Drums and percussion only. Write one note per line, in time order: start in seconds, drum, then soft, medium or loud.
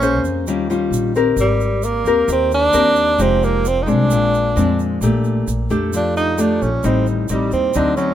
0.02 shaker medium
0.25 shaker soft
0.47 shaker medium
0.70 shaker soft
0.93 shaker medium
1.15 shaker soft
1.37 shaker medium
1.60 shaker soft
1.83 shaker medium
2.06 shaker soft
2.28 shaker medium
2.51 shaker soft
2.73 shaker medium
2.96 shaker soft
3.19 shaker medium
3.43 shaker soft
3.65 shaker medium
3.88 shaker soft
4.11 shaker medium
4.34 shaker soft
4.57 shaker medium
4.79 shaker soft
5.02 shaker medium
5.24 shaker soft
5.48 shaker medium
5.70 shaker soft
5.93 shaker medium
6.17 shaker soft
6.38 shaker medium
6.62 shaker soft
6.83 shaker medium
7.06 shaker soft
7.28 shaker medium
7.52 shaker soft
7.74 shaker medium
7.97 shaker soft